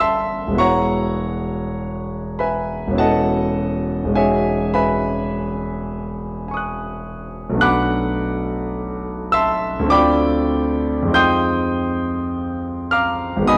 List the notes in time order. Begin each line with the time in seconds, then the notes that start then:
Already playing: G1 A3 B3 E4 F#4
0.00 E5 A5 C6 E6
0.47 E1 G#3
0.53 B3 E4
0.57 F#4 C#5 F#5 A#5 C#6
2.39 B4 E5 G#5 B5
2.87 E1 B3
2.92 C#4 E4
2.97 F#4 A4 D#5 F#5 A5
4.04 E1 G#3
4.09 C#4 D#4
4.14 F#4 G#4 C#5 E5 G#5
4.74 B4 E5 G#5 B5
6.48 G#5 C#6
6.54 D#6 F#6
7.50 B1 A3
7.55 B3 D4
7.59 F#4 F#5 B5 D6 F#6
9.32 E5 A5 C6 E6
9.80 D2 A3
9.84 C4 D4
9.89 F4 D5 G5 B5 D6
11.03 F2 G#3
11.08 C4 D#4
11.12 F4 G5 C6 D#6 G6
12.91 F5 A#5 D6 F6
13.36 G#1 G#3
13.42 B3 D#4
13.46 F#4 D#5 G#5 B5 D#6